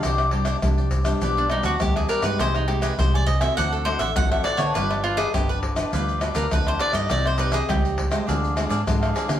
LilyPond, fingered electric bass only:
\new Staff \with { instrumentName = "Fingered electric bass" } { \clef bass \time 4/4 \key c \minor \tempo 4 = 102 c,4 c,4 b,,8. d,16 d,8 r16 g,16 | c,4 c,4 d,8. a,,16 a,,8 r16 d16 | g,,4 g,,4 d,8. d,16 d,8 r16 g,16 | c,4 des,4 d,8. aes,16 aes,8 r16 d16 | }